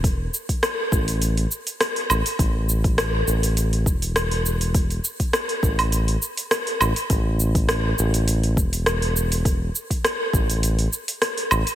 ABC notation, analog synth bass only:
X:1
M:4/4
L:1/8
Q:"Swing 16ths" 1/4=102
K:C
V:1 name="Analog synth bass" clef=bass
E,,, z2 A,,,2 z2 A,,, | A,,,3 A,,,2 E,,,3- | E,,, z2 A,,,2 z2 A,,, | A,,,3 A,,,2 E,,,3- |
E,,, z2 A,,,2 z2 A,,, |]